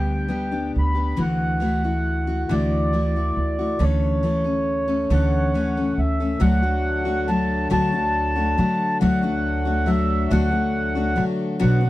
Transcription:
Already playing: upright bass D2, steel-string acoustic guitar D3 G3 B3 D4 G4, accordion G5
0.28 steel-string acoustic guitar G3 B3 D4 G4
0.52 steel-string acoustic guitar B3 D4 G4
0.76 upright bass D2, accordion B5
0.95 steel-string acoustic guitar B3 D4 G4
1.16 upright bass D2, steel-string acoustic guitar D3 E3 A3 E4 F#4
1.21 accordion F#5
1.60 steel-string acoustic guitar E3 A3 E4 F#4
1.84 steel-string acoustic guitar A3 E4 F#4
2.27 steel-string acoustic guitar A3 E4 F#4
2.49 upright bass D2, steel-string acoustic guitar D3 E3 A3 E4 F#4, accordion D5
2.93 steel-string acoustic guitar E3 A3 E4 F#4
3.16 steel-string acoustic guitar A3 E4 F#4
3.36 upright bass D2
3.59 steel-string acoustic guitar A3 E4 F#4
3.79 upright bass D2, steel-string acoustic guitar D3 E3 A3 C#4 A4, accordion C#5
4.23 steel-string acoustic guitar E3 A3 C#4 A4
4.44 steel-string acoustic guitar A3 C#4 A4
4.88 steel-string acoustic guitar A3 C#4 A4
5.10 upright bass D2, steel-string acoustic guitar D3 E3 A3 C#4 A4, accordion F#5
5.54 steel-string acoustic guitar E3 A3 C#4 A4
5.77 steel-string acoustic guitar A3 C#4 A4
5.97 upright bass D2, accordion E5
6.20 steel-string acoustic guitar A3 C#4 A4
6.40 upright bass D2, steel-string acoustic guitar D3 F#3 A3 D4 F#4, harmonium D3 F#3 A3, accordion F#5
6.62 steel-string acoustic guitar A3 D4 F#4
7.05 steel-string acoustic guitar A3 D4 F#4
7.28 steel-string acoustic guitar F#3 A3 D4 F#4, accordion A5
7.70 upright bass D2, steel-string acoustic guitar D3 F#3 A3 D4 F#4, accordion A5
7.92 steel-string acoustic guitar A3 D4 F#4
8.36 steel-string acoustic guitar A3 D4 F#4
8.58 upright bass D3, steel-string acoustic guitar F#3 A3 D4 F#4
9.01 upright bass D2, steel-string acoustic guitar D3 F#3 A3 D4 F#4, accordion F#5
9.23 steel-string acoustic guitar A3 D4 F#4
9.65 steel-string acoustic guitar A3 D4 F#4
9.86 steel-string acoustic guitar F#3 A3 D4 F#4, accordion E5
10.31 upright bass D2, steel-string acoustic guitar D3 F#3 A3 D4 F#4, accordion F#5
10.51 steel-string acoustic guitar A3 D4 F#4
10.95 steel-string acoustic guitar A3 D4 F#4
11.16 upright bass D3, steel-string acoustic guitar F#3 A3 D4 F#4
11.59 upright bass B1, steel-string acoustic guitar B2 F#3 B3 D4 F#4, harmonium B3, accordion F#5
11.81 steel-string acoustic guitar B3 D4 F#4

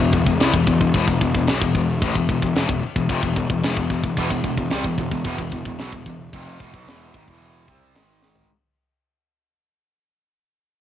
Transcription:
0.00 picked electric bass E1, distorted electric guitar E2 B2
0.13 picked electric bass E1, distorted electric guitar E2 B2, kick
0.26 picked electric bass E1, distorted electric guitar E2 B2, kick
0.40 picked electric bass C2, distorted electric guitar C3 G3, snare, china
0.54 picked electric bass E1, distorted electric guitar E2 B2, kick
0.67 picked electric bass E1, distorted electric guitar E2 B2, kick
0.81 picked electric bass E1, distorted electric guitar E2 B2, kick
0.94 picked electric bass E1, distorted electric guitar E2 B2, kick, china
1.07 picked electric bass E1, distorted electric guitar E2 B2, kick
1.21 picked electric bass E1, distorted electric guitar E2 B2, kick
1.34 picked electric bass E1, distorted electric guitar E2 B2, kick
1.47 picked electric bass B1, distorted electric guitar B2 F#3, snare, china
1.61 picked electric bass E1, distorted electric guitar E2 B2, kick
1.75 picked electric bass E1, distorted electric guitar E2 B2, kick
2.01 picked electric bass A1, distorted electric guitar A2 E3, kick, china
2.15 picked electric bass E1, distorted electric guitar E2 B2, kick
2.29 picked electric bass E1, distorted electric guitar E2 B2, kick
2.42 picked electric bass E1, distorted electric guitar E2 B2, kick
2.55 picked electric bass E1, distorted electric guitar E2 B2, snare, china
2.69 picked electric bass E1, distorted electric guitar E2 B2, kick
2.83 muted distorted electric guitar stroke, muted picked electric bass stroke
2.96 picked electric bass E1, distorted electric guitar E2 B2, kick
3.09 picked electric bass F1, distorted electric guitar F2 C3, kick, china
3.23 picked electric bass E1, distorted electric guitar E2 B2, kick
3.36 picked electric bass E1, distorted electric guitar E2 B2, kick
3.50 picked electric bass E1, distorted electric guitar E2 B2, kick
3.63 picked electric bass E1, distorted electric guitar E2 B2, snare, china
3.77 picked electric bass E1, distorted electric guitar E2 B2, kick
3.90 picked electric bass E1, distorted electric guitar E2 B2, kick
4.04 picked electric bass E1, distorted electric guitar E2 B2, kick
4.17 picked electric bass E1, distorted electric guitar E2 B2, kick, china
4.31 picked electric bass E1, distorted electric guitar E2 B2, kick
4.44 picked electric bass E1, distorted electric guitar E2 B2, kick
4.57 picked electric bass E1, distorted electric guitar E2 B2, kick
4.70 picked electric bass C2, distorted electric guitar C3 G3, snare, china
4.84 picked electric bass E1, distorted electric guitar E2 B2, kick
4.98 picked electric bass E1, distorted electric guitar E2 B2, kick
5.11 picked electric bass E1, distorted electric guitar E2 B2, kick
5.24 picked electric bass E1, distorted electric guitar E2 B2, kick, china
5.39 picked electric bass E1, distorted electric guitar E2 B2, kick
5.52 picked electric bass E1, distorted electric guitar E2 B2, kick
5.66 picked electric bass E1, distorted electric guitar E2 B2, kick
5.79 picked electric bass B1, distorted electric guitar B2 F#3, snare, china
5.92 picked electric bass E1, distorted electric guitar E2 B2, kick
6.06 picked electric bass E1, distorted electric guitar E2 B2, kick
6.33 picked electric bass F1, distorted electric guitar F2 C3 F3, kick, china
6.60 picked electric bass E1, distorted electric guitar E2 B2, kick
6.74 picked electric bass B1, distorted electric guitar B2 F#3, kick
6.87 picked electric bass E1, distorted electric guitar E2 B2 E3, snare, china
7.14 picked electric bass G#1, distorted electric guitar G#2 D#3, kick
7.28 picked electric bass E1, distorted electric guitar E2 B2 E3, kick
7.42 china
7.68 picked electric bass C2, distorted electric guitar C3 G3 C4, kick
7.95 picked electric bass G#1, distorted electric guitar G#2 D#3 G#3, snare, china
8.23 snare
8.35 floor tom

